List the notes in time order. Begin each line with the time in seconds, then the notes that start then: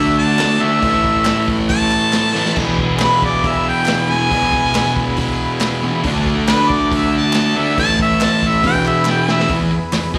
Already playing: D3 A3 D4 F#4 A4 D5 E5
0.19 A5
0.39 snare, clap, open hi-hat
0.59 D3 A3 D4 E5
0.80 A2 E3 A3 E4 A4 C#5, kick, open hi-hat
1.04 kick
1.25 snare, clap, open hi-hat
1.48 kick
1.69 A5, kick, open hi-hat
1.91 clap
2.13 snare, clap, open hi-hat
2.33 A2 E3 A3, snare
2.46 snare
2.56 E2 B2 E4 G#4 B4, kick, crash
2.60 E3
2.79 kick
2.99 snare, clap, open hi-hat
3.04 B4
3.22 D5, kick
3.44 kick, open hi-hat
3.48 E5
3.69 G5
3.86 snare, clap, open hi-hat
4.08 B2 E3 G#5
4.12 E2
4.30 E2 B2 E3, kick, open hi-hat
4.53 kick
4.74 snare, clap, open hi-hat
4.96 kick
5.17 kick, open hi-hat
5.60 snare, clap, open hi-hat
5.82 E2 B2 E3
6.03 D3 A3 D4 F#4 A4 D5, kick, open hi-hat
6.26 kick
6.48 B4, snare, clap, open hi-hat
6.69 D5, kick
6.92 kick, open hi-hat
6.96 E5
7.18 A5
7.33 snare, clap, open hi-hat
7.56 D3 A3 D4 E5
7.76 A2 E3 A3 E4 A4 C#5 A5, kick, open hi-hat
8.00 E5, kick
8.21 snare, clap, open hi-hat
8.25 A5
8.43 kick
8.47 E5
8.62 E2 B2 E3 E4 G#4, kick, open hi-hat
8.66 B4 G5
8.85 E5, clap
9.05 snare, clap
9.10 G5
9.29 E5, snare
9.40 snare
9.48 E2 E3 E4 G#4 B4, kick, open hi-hat
9.71 E2
9.93 E2, snare, clap, open hi-hat
10.14 B2 B3, kick